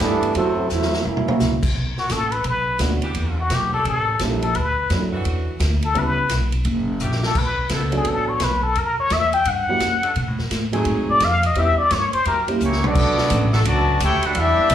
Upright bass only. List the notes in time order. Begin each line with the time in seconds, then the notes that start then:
0.00 G2
0.35 F#2
0.70 E2
1.05 F#2
1.40 C#2
1.75 B1
1.98 muted upright bass stroke
2.10 A1
2.45 B1
2.80 D2
3.15 E2
3.50 B1
3.85 A1
4.20 A#1
4.55 D2
4.90 F#2
5.25 E2
5.60 D2
5.95 C#2
6.30 B1
6.65 F#1
7.01 A#1
7.35 B1
7.70 C#2
8.05 A1
8.40 B1
8.76 F#2
9.11 E2
9.46 G2
9.81 F#2
10.16 B2
10.28 A2
10.39 F#2
10.51 A2
10.85 G#2
11.09 muted upright bass stroke
11.21 F2
11.55 E2
11.91 G2
12.14 muted upright bass stroke
12.26 F#2
12.61 C#2
12.96 B1
13.31 A1
13.66 C#2
14.00 D2
14.24 muted upright bass stroke
14.35 E2
14.58 muted upright bass stroke
14.70 B2